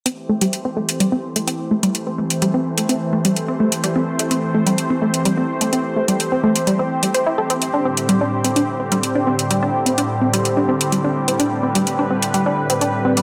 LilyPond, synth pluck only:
\new Staff \with { instrumentName = "Synth pluck" } { \time 4/4 \key a \minor \tempo 4 = 127 c'16 r16 a16 g16 r16 c'16 a16 r16 g16 c'16 r16 a16 c'16 r16 a16 g16 | r16 c'16 a16 r16 g16 c'16 r16 a16 c'16 r16 a16 g16 r16 c'16 a16 r16 | g16 c'16 r16 a16 c'16 r16 a16 g16 r16 c'16 a16 r16 g16 c'16 r16 a16 | c'16 r16 a16 g16 r16 c'16 a16 r16 g16 c'16 r16 g16 c''16 e'16 a'16 c'16 |
r16 d'16 c'16 r16 g16 d'16 r16 c'16 d'16 r16 c'16 g16 r16 d'16 c'16 r16 | g16 d'16 r16 c'16 d'16 r16 c'16 g16 r16 d'16 c'16 r16 g16 d'16 r16 c'16 | d'16 r16 c'16 g16 r16 d'16 c'16 r16 g16 d'16 r16 c'16 d'16 r16 c'16 g16 | }